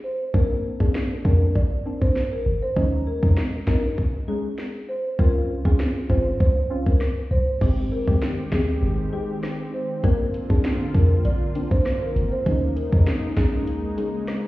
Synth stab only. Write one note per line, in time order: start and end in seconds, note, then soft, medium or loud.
0.34 0.76 A#3 medium
0.34 0.77 C4 medium
0.34 0.77 D4 loud
0.80 1.21 A#3 medium
0.80 1.22 C4 medium
0.80 1.22 D4 medium
1.24 1.53 A#3 medium
1.24 1.53 C4 medium
1.24 1.53 D4 medium
1.85 2.00 A#3 medium
1.85 2.00 C4 medium
1.85 2.00 D4 medium
2.76 3.19 G#3 medium
2.76 3.19 C#4 medium
2.76 3.19 D#4 loud
3.22 3.64 G#3 medium
3.22 3.64 C#4 medium
3.22 3.64 D#4 medium
3.67 3.95 G#3 medium
3.67 3.95 C#4 medium
3.67 3.95 D#4 medium
4.28 4.43 G#3 medium
4.28 4.43 C#4 medium
4.28 4.43 D#4 medium
5.19 5.61 C4 medium
5.19 5.61 C#4 medium
5.19 5.62 F4 loud
5.65 6.06 C4 medium
5.65 6.06 C#4 medium
5.65 6.07 F4 medium
6.09 6.38 C4 medium
6.09 6.38 C#4 medium
6.09 6.38 F4 medium
6.70 6.85 C4 medium
6.70 6.85 C#4 medium
6.70 6.85 F4 medium
7.61 8.04 G#3 medium
7.61 8.04 C4 medium
7.61 8.04 G4 loud
8.07 8.49 G#3 medium
8.07 8.49 C4 medium
8.07 8.49 G4 medium
8.52 8.80 G#3 medium
8.52 8.80 C4 medium
8.52 8.80 G4 medium
9.13 9.27 G#3 medium
9.13 9.28 C4 medium
9.13 9.28 G4 medium
10.03 10.46 A#3 medium
10.03 10.46 C4 medium
10.03 10.46 D4 loud
10.50 10.91 A#3 medium
10.50 10.91 C4 medium
10.50 10.91 D4 medium
10.94 11.22 A#3 medium
10.94 11.23 C4 medium
10.94 11.23 D4 medium
11.55 11.70 A#3 medium
11.55 11.70 C4 medium
11.55 11.70 D4 medium
12.46 12.88 G#3 loud
12.46 12.89 C#4 medium
12.46 12.89 D#4 loud
12.92 13.33 G#3 medium
12.92 13.34 C#4 medium
12.92 13.34 D#4 medium
13.37 13.65 G#3 medium
13.37 13.65 C#4 medium
13.37 13.65 D#4 medium
13.98 14.12 G#3 medium
13.98 14.13 C#4 medium
13.98 14.13 D#4 medium